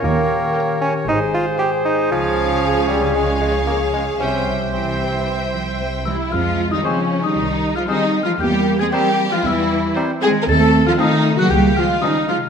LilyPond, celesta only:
\new Staff \with { instrumentName = "Celesta" } { \time 4/4 \key f \minor \tempo 4 = 116 r1 | r1 | r2. r8 e'''8 | f'''8. ees'''16 des'''8. ees'''4 f'''16 \tuplet 3/2 { ees'''4 f'''8 } |
g'''8. aes'''16 g'''8. f'''16 e'''4 r8 aes'''8 | a'''8. f'''16 ees'''8. ges'''16 g'''8 f'''8 ees'''8 f'''8 | }